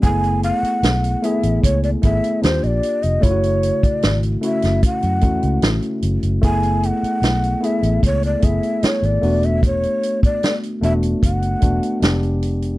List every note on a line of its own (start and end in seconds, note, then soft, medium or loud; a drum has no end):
0.02 0.50 F#1 medium
0.02 0.09 G#3 medium
0.02 0.96 B3 medium
0.02 0.97 E4 medium
0.02 0.98 G#4 medium
0.02 0.41 G#5 loud
0.02 kick loud
0.02 closed hi-hat medium
0.08 0.99 A3 medium
0.24 closed hi-hat soft
0.43 0.57 F5 medium
0.43 closed hi-hat medium
0.57 1.25 F#5 medium
0.63 muted fingered electric bass stroke soft
0.63 closed hi-hat soft
0.83 1.15 B1 medium
0.83 snare medium
0.83 closed hi-hat medium
1.04 closed hi-hat soft
1.22 1.85 A3 medium
1.22 1.85 B3 medium
1.22 1.86 E4 medium
1.22 1.87 G#4 medium
1.22 1.63 E5 medium
1.22 closed hi-hat medium
1.43 1.59 A1 medium
1.43 closed hi-hat soft
1.63 1.95 C#2 medium
1.63 1.82 C#5 medium
1.63 kick medium
1.63 closed hi-hat medium
1.83 1.90 D5 medium
1.83 closed hi-hat soft
2.02 2.19 G#1 medium
2.02 2.43 A3 medium
2.02 2.43 B3 medium
2.02 2.44 E4 medium
2.02 2.44 G#4 medium
2.02 2.41 E5 medium
2.02 kick medium
2.02 closed hi-hat medium
2.24 closed hi-hat medium
2.42 2.59 D#2 medium
2.42 3.07 A#3 medium
2.42 3.07 D4 medium
2.42 3.08 F4 medium
2.42 3.08 G4 medium
2.42 2.65 C5 medium
2.42 snare loud
2.42 closed hi-hat medium
2.63 2.79 A#1 medium
2.63 3.04 D5 medium
2.63 2.68 D#5 medium
2.63 closed hi-hat soft
2.83 closed hi-hat medium
3.03 3.19 F1 medium
3.03 3.24 D#5 medium
3.03 closed hi-hat soft
3.21 3.70 F#1 medium
3.21 4.16 C#3 medium
3.21 4.15 A3 medium
3.21 4.17 E4 medium
3.21 3.31 F4 medium
3.21 3.85 C#5 medium
3.21 kick medium
3.21 closed hi-hat medium
3.31 4.20 F#4 medium
3.43 closed hi-hat soft
3.63 closed hi-hat medium
3.83 4.17 D5 medium
3.83 muted fingered electric bass stroke soft
3.83 kick medium
3.83 closed hi-hat soft
4.02 4.35 G#1 medium
4.02 snare loud
4.02 closed hi-hat medium
4.23 closed hi-hat soft
4.41 5.04 A3 medium
4.41 5.05 C#4 medium
4.41 5.05 E4 medium
4.41 5.06 F#4 medium
4.41 4.81 E5 medium
4.41 closed hi-hat medium
4.62 4.79 F#1 medium
4.62 snare soft
4.62 closed hi-hat medium
4.83 5.61 F#5 medium
4.83 kick medium
4.83 closed hi-hat medium
5.02 5.23 F#2 medium
5.02 closed hi-hat soft
5.21 5.39 E2 medium
5.21 6.16 A3 medium
5.21 6.16 C#4 medium
5.21 6.17 E4 soft
5.21 6.17 F#4 medium
5.21 kick medium
5.21 closed hi-hat medium
5.43 5.59 C#2 medium
5.43 closed hi-hat soft
5.62 5.79 A1 medium
5.62 snare loud
5.62 closed hi-hat medium
5.82 closed hi-hat soft
6.02 6.19 F#1 medium
6.02 closed hi-hat medium
6.23 6.39 F#1 medium
6.23 closed hi-hat soft
6.42 6.90 F#1 medium
6.42 7.36 A3 medium
6.42 7.36 B3 medium
6.42 7.37 E4 medium
6.42 7.37 G#4 medium
6.42 6.87 G#5 medium
6.42 kick medium
6.42 closed hi-hat medium
6.63 closed hi-hat soft
6.83 7.67 F#5 medium
6.83 closed hi-hat medium
7.03 muted fingered electric bass stroke soft
7.03 closed hi-hat soft
7.22 7.54 B1 medium
7.22 snare medium
7.22 closed hi-hat medium
7.44 closed hi-hat soft
7.61 8.24 A3 medium
7.61 8.24 B3 medium
7.61 8.25 E4 medium
7.61 8.26 G#4 medium
7.61 closed hi-hat medium
7.65 8.04 E5 medium
7.83 7.99 A1 medium
7.83 closed hi-hat medium
8.03 8.34 C#2 medium
8.03 8.23 C#5 medium
8.03 kick medium
8.03 closed hi-hat medium
8.23 8.46 D5 medium
8.23 closed hi-hat soft
8.40 8.59 F#1 medium
8.40 9.20 A3 medium
8.40 9.21 B3 medium
8.40 9.23 E4 medium
8.40 9.23 G#4 medium
8.40 kick medium
8.40 closed hi-hat medium
8.45 8.86 E5 medium
8.63 closed hi-hat soft
8.83 9.07 C#5 medium
8.83 muted fingered electric bass stroke soft
8.83 snare medium
8.83 closed hi-hat medium
9.02 9.18 G#1 medium
9.02 9.47 D5 medium
9.02 closed hi-hat soft
9.21 9.86 E1 medium
9.21 10.50 A3 medium
9.21 10.51 B3 medium
9.21 10.51 D4 medium
9.21 10.51 F#4 medium
9.21 open hi-hat soft
9.43 9.64 E5 medium
9.43 closed hi-hat soft
9.63 10.20 C#5 medium
9.63 kick loud
9.63 closed hi-hat medium
9.83 closed hi-hat soft
10.03 closed hi-hat medium
10.23 10.55 D5 medium
10.23 muted fingered electric bass stroke soft
10.23 kick medium
10.23 closed hi-hat medium
10.43 snare medium
10.43 closed hi-hat medium
10.63 closed hi-hat soft
10.81 11.14 E1 medium
10.81 11.44 A3 medium
10.81 11.45 B3 medium
10.81 11.45 D4 medium
10.81 11.46 F#4 medium
10.81 10.93 E5 medium
10.81 closed hi-hat medium
11.03 closed hi-hat medium
11.23 11.54 F#1 medium
11.23 11.99 F#5 medium
11.23 kick medium
11.23 closed hi-hat medium
11.42 closed hi-hat soft
11.61 11.78 E1 medium
11.61 12.02 A3 medium
11.61 12.01 B3 medium
11.61 12.01 D4 medium
11.61 12.03 F#4 medium
11.61 kick medium
11.61 closed hi-hat medium
11.83 closed hi-hat soft
12.00 12.78 F1 medium
12.00 12.65 G#3 medium
12.00 12.66 B3 medium
12.00 12.67 D4 medium
12.00 12.67 G4 medium
12.00 snare loud
12.00 closed hi-hat medium
12.23 closed hi-hat soft
12.43 closed hi-hat medium
12.62 closed hi-hat soft